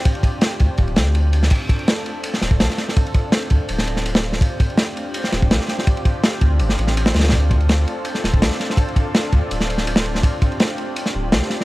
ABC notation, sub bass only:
X:1
M:4/4
L:1/8
Q:"Swing 16ths" 1/4=165
K:Dm
V:1 name="Sub bass" clef=bass
z3 D,, D,,, D,,3 | z4 z D,,, C,, z | z3 D,, D,,,4 | z4 z D,,, C,, z |
z3 D,, G,,, A,,,2 D,,- | D,,3 z2 D,,, C,, z | z3 D,, D,,,4 | z4 z D,,, C,, z |]